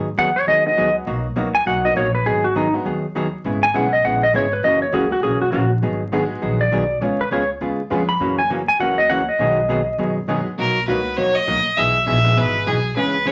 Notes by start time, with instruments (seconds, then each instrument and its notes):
Already playing: upright bass G#2
0.17 upright bass E2, hollow-body jazz guitar D#3 F#3 B3 D#4 G#4, electric slide guitar F#5
0.36 electric slide guitar C#5
0.47 upright bass D#2, hollow-body jazz guitar D#3 F#3 B3 D#4 G#4, electric slide guitar D#5
0.65 honky-tonk piano F#3 G#3 B3 D#4 F#4, electric slide guitar D#5
0.77 upright bass C#2, hollow-body jazz guitar D#3 F#3 B3 D#4 G#4
1.07 upright bass B1, hollow-body jazz guitar B2 F#3 A#3 D#4 F#4
1.36 upright bass C#2, hollow-body jazz guitar B2 F#3 A#3 D#4 F#4, honky-tonk piano F#3 A#3 B3 D#4 F#4
1.55 electric slide guitar G#5
1.66 upright bass B1, hollow-body jazz guitar B2 F#3 A#3 D#4 F#4, electric slide guitar F#5
1.84 honky-tonk piano F#3 A#3 B3 D#4 F#4, electric slide guitar D#5
1.96 upright bass A#1, hollow-body jazz guitar B2 F#3 A#3 D#4 F#4, electric slide guitar C#5
2.15 electric slide guitar B4
2.26 upright bass G#1, hollow-body jazz guitar D#3 F#3 B3 D#4 G#4, electric slide guitar G#4
2.44 electric slide guitar F#4
2.55 hollow-body jazz guitar D#3 F#3 B3 D#4 G#4, electric slide guitar D#4
2.74 honky-tonk piano F#3 G#3 B3 D#4 F#4
2.85 upright bass D#2, hollow-body jazz guitar D#3 F#3 B3 D#4 G#4
3.15 hollow-body jazz guitar D#3 F#3 B3 D#4 G#4
3.44 upright bass G#1, hollow-body jazz guitar C#3 G#3 B3 E4 G#4
3.63 electric slide guitar G#5
3.73 upright bass B1, hollow-body jazz guitar C#3 G#3 B3 E4 G#4, honky-tonk piano G#3 B3 C#4 E4 G#4, electric slide guitar F#5
3.93 electric slide guitar D#5
4.04 upright bass A#1, hollow-body jazz guitar C#3 G#3 B3 E4 G#4, electric slide guitar F#5
4.23 electric slide guitar D#5
4.34 upright bass G#1, hollow-body jazz guitar C#3 G#3 B3 E4 G#4, electric slide guitar C#5
4.53 electric slide guitar B4
4.63 upright bass F#1, hollow-body jazz guitar C#3 E3 A#3 C#4 F#4, electric slide guitar D#5
4.82 electric slide guitar C#5
4.92 upright bass C#2, hollow-body jazz guitar C#3 E3 A#3 C#4 F#4, honky-tonk piano F#3 A#3 C#4 E4 F#4, electric slide guitar G#4
5.12 electric slide guitar F#4
5.22 upright bass B1, hollow-body jazz guitar C#3 E3 A#3 C#4 F#4, electric slide guitar G#4
5.42 electric slide guitar F#4
5.51 upright bass A#1, hollow-body jazz guitar C#3 E3 A#3 C#4 F#4, electric slide guitar F#4
5.82 upright bass G#1, hollow-body jazz guitar D#3 F#3 B3 D#4 G#4
6.12 hollow-body jazz guitar D#3 F#3 B3 D#4 G#4, honky-tonk piano G#3 B3 D#4 F#4 G#4
6.42 upright bass A#1, hollow-body jazz guitar D#3 F#3 B3 D#4 G#4
6.61 electric slide guitar D5
6.72 upright bass B1, hollow-body jazz guitar D#3 F#3 B3 D#4 G#4
7.01 upright bass C#2, hollow-body jazz guitar C#3 G#3 B3 F4 G#4, electric slide guitar C#5
7.21 electric slide guitar B4
7.31 upright bass C#2, hollow-body jazz guitar C#3 G#3 B3 F4 G#4, electric slide guitar C#5
7.61 upright bass D#2, hollow-body jazz guitar C#3 G#3 B3 F4 G#4
7.90 upright bass F2, hollow-body jazz guitar C#3 G#3 B3 F4 G#4, honky-tonk piano G#3 B3 C#4 F4 G#4
8.09 electric slide guitar B5
8.20 upright bass F#2, hollow-body jazz guitar C#3 E3 A#3 C#4 F#4
8.39 electric slide guitar G#5
8.50 hollow-body jazz guitar C#3 E3 A#3 C#4 F#4
8.68 electric slide guitar G#5
8.79 upright bass C#2, hollow-body jazz guitar C#3 E3 A#3 C#4 F#4, honky-tonk piano F#3 A#3 C#4 E4 F#4, electric slide guitar F#5
8.98 electric slide guitar D#5
9.10 hollow-body jazz guitar C#3 E3 A#3 C#4 F#4, electric slide guitar F#5
9.29 electric slide guitar D#5
9.38 upright bass B1, hollow-body jazz guitar B2 D#3 F#3 B3 D#4 G#4, honky-tonk piano F#3 G#3 B3 D#4 F#4
9.68 hollow-body jazz guitar B2 D#3 F#3 B3 D#4 G#4
9.98 upright bass F#2, hollow-body jazz guitar B2 D#3 F#3 B3 D#4 G#4
10.28 hollow-body jazz guitar B2 D#3 F#3 B3 D#4 G#4, honky-tonk piano F#3 G#3 B3 D#4 G#4
10.58 upright bass B1, hollow-body jazz guitar B2 F#3 A#3 D#4 F#4, fiddle A#4
10.88 upright bass C#2, hollow-body jazz guitar B2 F#3 A#3 D#4 F#4, honky-tonk piano F#3 A#3 B3 D#4 F#4, fiddle B4
11.17 upright bass D#2, hollow-body jazz guitar B2 F#3 A#3 D#4 F#4, fiddle C#5
11.35 fiddle D#5
11.47 upright bass C#2, hollow-body jazz guitar B2 F#3 A#3 D#4 F#4
11.66 muted upright bass stroke
11.77 upright bass B1, hollow-body jazz guitar B2 E3 B3 D#4 G#4, fiddle E5
12.06 upright bass A#1, hollow-body jazz guitar B2 E3 B3 D#4 G#4, fiddle E5
12.24 honky-tonk piano G#3 B3 D#4 E4 G#4
12.36 upright bass G#1, hollow-body jazz guitar B2 E3 B3 D#4 G#4, fiddle B4
12.66 upright bass B1, hollow-body jazz guitar B2 E3 B3 D#4 G#4, fiddle G#4
12.96 upright bass C#2, hollow-body jazz guitar C#3 E3 B3 C#4 G#4, honky-tonk piano G#3 B3 C#4 E4 G#4, fiddle B4
13.26 upright bass D#2, hollow-body jazz guitar C#3 E3 B3 C#4 G#4, fiddle C#5